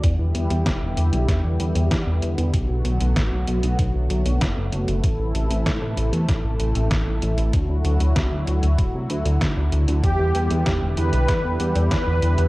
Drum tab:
HH |x-xxx-xxx-xxx-xx|x-xxx-xxx-xxx-xx|x-xxx-xxx-xxx-xx|x-xxx-xxx-xxx-xx|
SD |----o---o---o---|----o-------o---|----o---o---o---|----o-------o---|
BD |o---o---o---o---|o---o---o---o---|o---o---o---o---|o---o---o---o---|

HH |x-xxx-xxx-xxx-xx|
SD |----o---o---o---|
BD |o---o---o---o---|